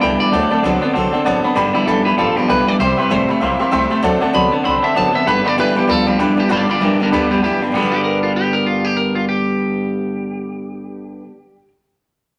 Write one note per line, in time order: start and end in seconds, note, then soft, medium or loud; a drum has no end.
0.00 0.18 C2 medium
0.00 0.18 G2 medium
0.00 0.21 G2 medium
0.00 0.21 D3 medium
0.00 0.18 E3 medium
0.00 0.21 G3 medium
0.00 0.21 B3 medium
0.00 0.20 D4 medium
0.00 0.19 G4 medium
0.00 0.12 D5 loud
0.00 0.13 G5 medium
0.00 0.20 G5 medium
0.00 0.13 B5 loud
0.19 0.31 G2 medium
0.19 0.31 E3 medium
0.19 0.33 G3 soft
0.19 0.34 B3 soft
0.19 0.33 D4 soft
0.19 0.33 G4 medium
0.19 0.27 D5 medium
0.19 1.10 D5 loud
0.19 0.28 G5 medium
0.19 0.28 B5 medium
0.31 0.46 D2 medium
0.31 0.49 D3 medium
0.31 0.52 D3 medium
0.31 0.52 F#3 medium
0.31 0.49 A3 medium
0.31 0.52 C4 medium
0.31 0.51 D4 medium
0.31 0.43 D5 loud
0.31 0.43 F#5 medium
0.31 0.44 A5 loud
0.35 0.50 A4 loud
0.50 0.62 D3 medium
0.50 0.62 A3 medium
0.50 0.64 C4 soft
0.50 0.64 D4 soft
0.50 0.63 A4 medium
0.50 0.58 D5 medium
0.50 0.58 F#5 medium
0.50 0.59 A5 loud
0.50 muted upright bass stroke medium
0.62 0.80 C2 medium
0.62 0.80 D3 loud
0.62 0.82 D3 medium
0.62 0.83 F#3 medium
0.62 0.80 B3 loud
0.62 0.83 C4 medium
0.62 0.82 D4 loud
0.62 0.80 A4 loud
0.62 0.74 D5 medium
0.62 0.75 F#5 medium
0.62 0.75 A5 medium
0.81 0.92 D3 medium
0.81 0.93 B3 medium
0.81 0.95 C4 medium
0.81 0.95 D4 medium
0.81 0.94 A4 medium
0.81 0.89 D5 medium
0.81 0.89 F#5 medium
0.81 0.90 A5 loud
0.93 1.11 B1 medium
0.93 1.11 D3 medium
0.93 1.13 F#3 medium
0.93 1.11 C4 medium
0.93 1.14 C4 medium
0.93 1.14 D4 medium
0.93 1.12 A4 medium
0.93 1.05 D5 medium
0.93 1.05 F#5 medium
0.93 1.05 A5 medium
1.11 1.24 D3 medium
1.11 1.24 C4 medium
1.11 1.26 D4 medium
1.11 1.26 A4 medium
1.11 1.19 D5 medium
1.11 1.20 F#5 medium
1.11 1.20 A5 medium
1.11 muted upright bass stroke medium
1.16 1.26 C4 soft
1.25 1.42 A1 medium
1.25 1.42 D3 medium
1.25 1.44 D3 medium
1.25 1.45 F#3 medium
1.25 1.42 B3 medium
1.25 1.45 C4 medium
1.25 1.45 D4 medium
1.25 1.43 A4 medium
1.25 1.36 D5 loud
1.25 1.36 F#5 loud
1.25 1.37 A5 loud
1.43 1.55 D3 medium
1.43 1.55 B3 medium
1.43 1.57 C4 medium
1.43 1.56 D4 medium
1.43 1.56 A4 medium
1.43 1.51 D5 medium
1.43 1.51 F#5 medium
1.43 1.52 B5 medium
1.55 1.69 G1 medium
1.55 1.72 G2 medium
1.55 1.75 G2 medium
1.55 1.73 D3 loud
1.55 1.75 D3 medium
1.55 1.75 G3 loud
1.55 1.75 B3 medium
1.55 1.74 D4 medium
1.55 1.73 G4 loud
1.55 1.67 D5 loud
1.55 1.67 G5 loud
1.55 1.68 B5 loud
1.73 1.84 G2 medium
1.73 1.85 D3 medium
1.73 1.87 G3 soft
1.73 1.87 B3 soft
1.73 1.87 D4 soft
1.73 1.87 E4 medium
1.73 1.87 G4 medium
1.73 1.81 D5 loud
1.73 1.82 G5 medium
1.73 1.82 B5 loud
1.73 muted upright bass stroke medium
1.85 2.03 G1 medium
1.85 2.03 G2 medium
1.85 2.06 G2 medium
1.85 2.06 D3 medium
1.85 2.03 E3 medium
1.85 2.06 G3 medium
1.85 2.06 B3 medium
1.85 2.06 D4 medium
1.85 2.05 G4 medium
1.85 2.05 A4 medium
1.85 1.98 D5 medium
1.85 1.98 G5 medium
1.85 1.98 B5 medium
2.05 2.16 G2 medium
2.05 2.16 E3 medium
2.05 2.17 G3 soft
2.05 2.18 B3 soft
2.05 2.18 D4 medium
2.05 2.18 G4 medium
2.05 2.17 B4 medium
2.05 2.13 D5 medium
2.05 2.13 G5 medium
2.05 2.14 B5 medium
2.05 muted upright bass stroke medium
2.17 2.34 A1 medium
2.17 2.34 G2 loud
2.17 2.35 F3 loud
2.17 2.37 G3 medium
2.17 2.37 B3 medium
2.17 2.37 D4 medium
2.17 2.36 G4 medium
2.17 2.36 A4 loud
2.17 2.29 D5 medium
2.17 2.29 G5 medium
2.17 2.29 B5 medium
2.36 2.47 G2 medium
2.36 2.47 F3 medium
2.36 2.49 G3 soft
2.36 2.49 B3 medium
2.36 2.50 D4 soft
2.36 2.48 G4 medium
2.36 2.49 G4 medium
2.36 2.44 D5 medium
2.36 2.44 G5 medium
2.36 2.45 B5 medium
2.36 muted upright bass stroke medium
2.48 2.65 B1 medium
2.48 2.65 G2 medium
2.48 2.68 G2 medium
2.48 2.68 D3 medium
2.48 2.65 E3 medium
2.48 2.68 G3 medium
2.48 2.68 B3 medium
2.48 2.67 D4 medium
2.48 2.67 G4 medium
2.48 2.68 B4 loud
2.48 2.60 D5 loud
2.48 2.60 G5 medium
2.48 2.60 B5 loud
2.67 2.78 G2 medium
2.67 2.79 E3 medium
2.67 2.79 G3 soft
2.67 2.81 B3 soft
2.67 2.80 D4 medium
2.67 2.80 G4 medium
2.67 2.75 D5 medium
2.67 2.80 D5 medium
2.67 2.75 G5 medium
2.67 2.75 B5 medium
2.67 muted upright bass stroke medium
2.79 2.93 C2 medium
2.79 2.96 C3 medium
2.79 2.98 C3 medium
2.79 2.97 G3 medium
2.79 2.99 G3 medium
2.79 2.99 C4 medium
2.79 2.99 E4 medium
2.79 2.98 G4 medium
2.79 2.98 C5 medium
2.79 2.90 E5 loud
2.79 2.91 G5 medium
2.79 2.91 C6 loud
2.97 3.10 C3 medium
2.97 3.10 G3 medium
2.97 3.10 C4 soft
2.97 3.11 E4 soft
2.97 3.11 G4 medium
2.97 3.11 B4 medium
2.97 3.05 E5 loud
2.97 3.06 G5 medium
2.97 3.06 C6 loud
3.09 3.27 A1 medium
3.09 3.29 C3 medium
3.09 3.27 C3 medium
3.09 3.29 G3 medium
3.09 3.28 A3 loud
3.09 3.29 C4 medium
3.09 3.29 E4 medium
3.09 3.28 G4 medium
3.09 3.29 C5 loud
3.09 3.21 E5 medium
3.09 3.22 G5 medium
3.09 3.22 C6 medium
3.28 3.40 C3 medium
3.28 3.41 A3 medium
3.28 3.40 C4 soft
3.28 3.41 E4 medium
3.28 3.41 G4 medium
3.28 3.36 E5 medium
3.28 3.36 G5 medium
3.28 3.36 B5 medium
3.28 muted upright bass stroke medium
3.40 3.57 B1 medium
3.40 3.59 C3 medium
3.40 3.60 G3 medium
3.40 3.59 A#3 medium
3.40 3.60 C4 medium
3.40 3.59 E4 medium
3.40 3.58 G4 medium
3.40 3.52 E5 medium
3.40 3.52 G5 medium
3.40 3.53 C6 medium
3.59 3.71 C3 medium
3.59 3.71 A#3 medium
3.59 3.71 C4 medium
3.59 3.72 E4 medium
3.59 3.72 G4 medium
3.59 3.67 E5 medium
3.59 3.67 G5 medium
3.59 3.68 C6 loud
3.71 3.89 C2 medium
3.71 3.90 C3 medium
3.71 3.89 C3 medium
3.71 3.91 G3 medium
3.71 3.89 A3 medium
3.71 3.91 C4 loud
3.71 3.90 E4 medium
3.71 3.89 G4 medium
3.71 3.83 E5 loud
3.71 3.84 G5 loud
3.71 3.84 C6 loud
3.90 4.02 C3 medium
3.90 4.02 A3 medium
3.90 4.03 C4 medium
3.90 4.03 E4 medium
3.90 4.03 G4 medium
3.90 3.98 E5 medium
3.90 3.98 G5 medium
3.90 3.99 C6 medium
4.03 4.16 D2 medium
4.03 4.22 D3 medium
4.03 4.20 D3 medium
4.03 4.22 F#3 loud
4.03 4.20 A3 loud
4.03 4.22 C4 loud
4.03 4.21 D4 loud
4.03 4.20 A4 loud
4.03 4.14 D5 loud
4.03 4.15 F#5 loud
4.03 4.15 A5 loud
4.20 4.33 D3 medium
4.20 4.33 A3 medium
4.20 4.33 C4 medium
4.20 4.33 D4 medium
4.20 4.34 A4 medium
4.20 4.29 D5 loud
4.20 4.29 F#5 loud
4.20 4.29 A5 loud
4.33 4.50 C2 medium
4.33 4.52 D3 medium
4.33 4.50 D3 medium
4.33 4.53 F#3 medium
4.33 4.51 B3 medium
4.33 4.53 C4 medium
4.33 4.52 D4 medium
4.33 4.51 A4 medium
4.33 4.45 D5 medium
4.33 4.45 F#5 medium
4.33 4.53 B5 loud
4.33 4.46 C6 medium
4.51 4.62 D3 medium
4.51 4.64 B3 medium
4.51 4.64 C4 soft
4.51 4.65 D4 medium
4.51 4.65 A4 medium
4.51 4.60 D5 medium
4.51 4.60 F#5 medium
4.51 4.60 A5 medium
4.63 4.82 B1 medium
4.63 4.81 D3 medium
4.63 4.83 F#3 medium
4.63 4.81 C4 loud
4.63 4.84 C4 medium
4.63 4.83 D4 medium
4.63 4.82 A4 medium
4.63 4.76 D5 medium
4.63 4.76 F#5 medium
4.63 4.83 B5 loud
4.63 4.76 C6 medium
4.82 4.93 D3 medium
4.82 4.94 C4 medium
4.82 4.96 C4 soft
4.82 4.96 D4 soft
4.82 4.96 A4 medium
4.82 4.90 D5 medium
4.82 4.96 E5 loud
4.82 4.91 F#5 medium
4.82 4.91 A5 medium
4.95 5.12 A1 medium
4.95 5.11 D3 medium
4.95 5.15 D3 medium
4.95 5.15 F#3 medium
4.95 5.12 B3 medium
4.95 5.15 C4 medium
4.95 5.15 D4 medium
4.95 5.14 A4 medium
4.95 5.07 D5 medium
4.95 5.07 F#5 medium
4.95 5.07 A5 loud
4.95 5.15 A5 medium
5.13 5.25 D3 medium
5.13 5.25 B3 medium
5.13 5.27 D4 soft
5.13 5.27 A4 medium
5.13 5.22 D5 medium
5.13 5.27 E5 loud
5.13 5.22 F#5 medium
5.13 5.23 A5 medium
5.13 muted upright bass stroke medium
5.18 5.28 C4 soft
5.26 5.62 G1 medium
5.26 5.43 G2 medium
5.26 5.46 G2 medium
5.26 5.44 D3 medium
5.26 5.46 D3 medium
5.26 5.46 G3 medium
5.26 5.46 B3 medium
5.26 5.45 D4 medium
5.26 5.44 G4 medium
5.26 5.48 B4 loud
5.26 5.38 D5 medium
5.26 5.38 G5 medium
5.26 5.38 B5 loud
5.44 5.56 G2 medium
5.44 5.56 D3 medium
5.44 5.57 G3 soft
5.44 5.58 B3 medium
5.44 5.58 D4 medium
5.44 5.58 G4 medium
5.44 5.52 D5 loud
5.44 5.59 D5 medium
5.44 5.53 G5 medium
5.44 5.53 B5 loud
5.57 5.74 G2 medium
5.57 5.76 G2 medium
5.57 5.76 D3 medium
5.57 5.75 E3 loud
5.57 5.77 G3 medium
5.57 5.76 B3 medium
5.57 5.75 D4 medium
5.57 5.74 G4 medium
5.57 5.77 B4 loud
5.57 5.69 D5 medium
5.57 5.69 G5 medium
5.57 5.70 B5 medium
5.75 5.87 G2 medium
5.75 5.88 E3 medium
5.75 5.87 G3 soft
5.75 5.88 B3 medium
5.75 5.88 D4 medium
5.75 5.88 G4 medium
5.75 5.90 G4 medium
5.75 5.83 D5 medium
5.75 5.83 G5 medium
5.75 5.84 B5 medium
5.75 muted upright bass stroke medium
5.87 6.24 D2 medium
5.87 6.05 G2 medium
5.87 6.05 F3 loud
5.87 6.07 G3 medium
5.87 6.06 B3 medium
5.87 6.06 D4 medium
5.87 6.04 G4 medium
5.87 6.07 A4 medium
5.87 5.99 D5 medium
5.87 6.00 G5 medium
5.87 6.00 B5 medium
6.06 6.17 G2 medium
6.06 6.18 F3 medium
6.06 6.19 G3 soft
6.06 6.19 B3 soft
6.06 6.19 D4 soft
6.06 6.19 G4 soft
6.06 6.19 G4 medium
6.06 6.14 D5 medium
6.06 6.14 G5 medium
6.06 6.15 B5 medium
6.18 6.36 G2 medium
6.18 6.38 G2 medium
6.18 6.38 D3 medium
6.18 6.36 E3 medium
6.18 6.38 G3 medium
6.18 6.37 B3 medium
6.18 6.38 D4 medium
6.18 6.37 D4 medium
6.18 6.36 G4 medium
6.18 6.30 D5 medium
6.18 6.30 G5 medium
6.18 6.31 B5 loud
6.36 6.49 G2 medium
6.36 6.49 E3 medium
6.36 6.48 G3 soft
6.36 6.49 B3 soft
6.36 6.49 D4 soft
6.36 6.49 G4 medium
6.36 6.52 G4 loud
6.36 6.45 D5 medium
6.36 6.45 G5 medium
6.36 6.46 A5 medium
6.36 muted upright bass stroke medium
6.49 6.86 G1 loud
6.49 6.69 G2 medium
6.49 6.67 G2 medium
6.49 6.68 D3 medium
6.49 6.67 D3 medium
6.49 6.69 G3 medium
6.49 6.69 B3 medium
6.49 6.68 D4 medium
6.49 6.68 F4 medium
6.49 6.67 G4 medium
6.49 6.61 D5 medium
6.49 6.69 D5 loud
6.49 6.62 G5 medium
6.49 6.62 B5 loud
6.68 6.80 G2 medium
6.68 6.80 D3 medium
6.68 6.80 G3 soft
6.68 6.80 B3 soft
6.68 6.81 D4 soft
6.68 6.81 F4 medium
6.68 6.81 G4 medium
6.68 6.76 D5 medium
6.68 6.82 D5 medium
6.68 6.76 G5 medium
6.68 6.77 B5 medium
6.80 6.98 G2 medium
6.80 6.98 E3 medium
6.80 7.00 G3 medium
6.80 7.00 B3 medium
6.80 7.00 D4 medium
6.80 6.99 D4 medium
6.80 6.99 G4 medium
6.80 7.00 A#4 medium
6.80 6.92 D5 medium
6.80 6.92 G5 medium
6.80 6.93 D6 medium
6.99 7.11 G2 medium
6.99 7.11 D3 medium
6.99 7.12 G3 soft
6.99 7.12 B3 soft
6.99 7.13 D4 soft
6.99 7.13 D4 medium
6.99 7.12 G4 medium
6.99 7.12 A#4 medium
6.99 7.07 D5 medium
6.99 7.07 G5 medium
6.99 7.08 A5 medium
6.99 muted upright bass stroke medium
7.11 7.48 D2 medium
7.11 7.29 G2 medium
7.11 7.31 G2 medium
7.11 7.29 D3 medium
7.11 7.31 D3 medium
7.11 7.32 G3 medium
7.11 7.29 B3 medium
7.11 7.31 B3 medium
7.11 7.31 D4 medium
7.11 7.30 G4 medium
7.11 7.23 D5 medium
7.11 7.23 G5 medium
7.11 7.24 B5 loud
7.30 7.42 G2 medium
7.30 7.42 D3 medium
7.30 7.43 G3 soft
7.30 7.42 B3 medium
7.30 7.43 B3 soft
7.30 7.44 D4 soft
7.30 7.43 G4 medium
7.30 7.38 D5 medium
7.30 7.38 G5 medium
7.30 7.39 B5 medium
7.42 7.60 G2 medium
7.42 7.60 E3 loud
7.42 7.62 G3 medium
7.42 7.63 B3 medium
7.42 7.62 D4 medium
7.42 7.62 G4 loud
7.42 7.54 D5 medium
7.42 7.54 G5 medium
7.42 7.54 B5 medium
7.46 7.61 G4 medium
7.61 7.71 G2 medium
7.61 7.73 D3 medium
7.61 7.76 G3 soft
7.61 7.76 B3 soft
7.61 7.75 D4 soft
7.61 7.75 G4 medium
7.61 7.69 D5 medium
7.61 7.69 G5 medium
7.61 7.70 B5 medium
7.61 muted upright bass stroke medium
7.71 11.22 G2 medium
7.71 11.22 G2 loud
7.71 11.24 D3 medium
7.71 11.24 G3 loud
7.71 11.13 D5 medium
7.71 11.16 G5 medium
7.75 11.18 G1 medium
7.75 11.25 D3 medium
7.75 11.28 G3 medium
7.75 11.26 B3 loud
7.75 11.26 D4 loud
7.75 11.19 B5 medium
7.80 11.30 B3 medium
7.80 11.33 D4 loud
7.84 11.34 G4 medium
7.92 8.03 G4 medium
8.04 8.23 A#4 medium
8.23 8.35 F4 medium
8.36 8.54 G4 medium
8.53 8.66 A#4 medium
8.66 8.85 F4 medium
8.85 8.97 G4 medium
8.97 9.15 A#4 medium
9.15 9.28 F4 medium
9.29 11.68 G4 medium